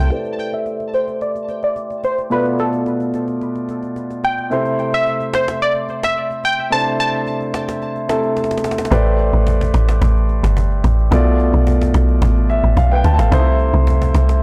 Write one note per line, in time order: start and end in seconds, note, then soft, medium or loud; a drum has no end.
0.00 0.10 C2 medium
0.00 0.11 C3 medium
0.00 0.10 A3 medium
0.00 0.10 E4 medium
0.00 0.11 G4 medium
0.00 0.55 G5 loud
0.10 2.27 A3 medium
0.10 2.27 E4 medium
0.10 2.27 G4 medium
0.10 2.27 B4 medium
0.10 2.28 C5 medium
0.10 2.28 D5 medium
0.10 cajon slap soft
0.25 cajon slap soft
0.39 cajon slap soft
0.53 0.95 E5 loud
0.53 cajon slap soft
0.66 cajon slap soft
0.80 cajon slap soft
0.94 1.22 C5 medium
0.94 cajon slap medium
1.08 cajon slap soft
1.21 1.63 D5 medium
1.21 cajon slap soft
1.35 cajon slap soft
1.49 cajon slap soft
1.63 2.05 D5 loud
1.63 cajon slap soft
1.76 cajon slap soft
1.90 cajon slap soft
2.04 2.32 C5 medium
2.04 cajon slap medium
2.18 cajon slap soft
2.30 4.47 B2 medium
2.30 4.47 A3 medium
2.30 4.48 F4 medium
2.30 2.44 B4 medium
2.30 4.48 D5 medium
2.30 cajon slap soft
2.45 cajon slap soft
2.59 3.65 A4 medium
2.59 cajon slap soft
2.73 cajon slap soft
2.86 cajon slap soft
3.00 cajon slap soft
3.14 cajon slap soft
3.28 cajon slap soft
3.41 cajon slap soft
3.55 cajon slap soft
3.69 cajon slap soft
3.83 cajon slap soft
3.96 cajon slap soft
4.10 cajon slap soft
4.24 4.96 G5 loud
4.24 cajon slap medium
4.38 cajon slap soft
4.50 6.67 C3 medium
4.50 6.67 A3 medium
4.50 6.68 E4 medium
4.50 6.68 C5 medium
4.50 cajon slap soft
4.65 cajon slap soft
4.79 cajon slap soft
4.93 5.36 E5 medium
4.93 cajon slap soft
5.06 cajon slap soft
5.20 cajon slap soft
5.34 5.63 C5 medium
5.34 cajon slap medium
5.48 cajon slap medium
5.61 6.05 D5 medium
5.61 cajon slap soft
5.76 cajon slap soft
5.89 cajon slap soft
6.03 6.46 E5 loud
6.03 cajon slap medium
6.16 cajon slap soft
6.31 cajon slap soft
6.44 6.73 G5 loud
6.44 cajon slap medium
6.59 cajon slap soft
6.70 8.06 C3 medium
6.70 8.06 A3 medium
6.70 6.79 D4 soft
6.70 8.07 C5 medium
6.70 6.85 A5 loud
6.70 cajon slap soft
6.78 8.08 E4 medium
6.86 cajon slap soft
6.99 8.06 A5 loud
6.99 cajon slap soft
7.13 cajon slap soft
7.27 cajon slap soft
7.41 cajon slap soft
7.54 cajon slap medium
7.69 cajon slap medium
7.82 cajon slap soft
7.96 cajon slap soft
8.08 8.91 C3 medium
8.08 8.89 A3 medium
8.08 8.92 E4 medium
8.08 8.92 A4 medium
8.08 cajon slap medium
8.23 cajon slap soft
8.37 cajon slap medium
8.44 cajon slap medium
8.51 cajon slap medium
8.58 cajon slap medium
8.64 cajon slap medium
8.71 cajon slap medium
8.78 cajon slap medium
8.85 cajon slap medium
8.91 9.32 A1 loud
8.91 11.07 A3 medium
8.91 11.08 G4 medium
8.91 11.08 B4 medium
8.91 11.08 C5 medium
8.91 11.09 D5 medium
8.91 cajon bass loud
9.06 cajon slap soft
9.19 cajon slap medium
9.33 9.73 A1 medium
9.33 cajon slap soft
9.47 cajon bass loud
9.61 cajon bass loud
9.74 10.01 A1 loud
9.74 cajon slap loud
9.89 cajon slap medium
10.02 10.42 A1 loud
10.02 cajon bass loud
10.16 cajon slap soft
10.29 cajon slap medium
10.44 10.83 G1 medium
10.44 cajon slap loud
10.57 cajon bass medium
10.71 cajon slap soft
10.84 11.11 A1 loud
10.84 cajon bass medium
10.84 cajon slap medium
10.99 cajon slap soft
11.11 11.52 B1 loud
11.11 13.28 B2 medium
11.11 13.28 A3 medium
11.11 13.28 F4 medium
11.11 12.74 D5 medium
11.11 cajon bass loud
11.26 cajon slap soft
11.39 cajon slap medium
11.54 11.93 B1 loud
11.54 cajon slap soft
11.67 cajon bass loud
11.81 cajon bass medium
11.94 12.21 B1 loud
11.94 cajon slap loud
12.09 cajon slap soft
12.22 12.62 A1 loud
12.22 cajon bass loud
12.36 cajon slap soft
12.49 12.75 E5 medium
12.49 cajon slap medium
12.64 12.77 A1 medium
12.64 cajon slap soft
12.77 13.04 B1 loud
12.77 12.94 F5 medium
12.77 cajon bass medium
12.91 13.04 B4 medium
12.91 12.94 G5 medium
12.91 cajon slap soft
12.95 13.12 G5 medium
13.04 13.18 D2 loud
13.04 13.12 A5 medium
13.04 cajon bass medium
13.04 cajon slap medium
13.14 13.31 A5 medium
13.19 13.32 A1 medium
13.19 13.45 A4 medium
13.19 13.45 F5 medium
13.19 cajon slap loud
13.31 13.72 C2 loud
13.31 14.43 C3 medium
13.31 14.43 A3 medium
13.31 13.39 D#4 medium
13.31 14.43 C5 medium
13.31 cajon bass loud
13.39 14.43 E4 medium
13.46 cajon slap soft
13.60 cajon slap medium
13.74 14.13 C2 loud
13.74 cajon slap soft
13.87 cajon bass loud
14.02 cajon bass medium
14.15 14.41 C2 loud
14.15 cajon slap loud
14.29 cajon slap medium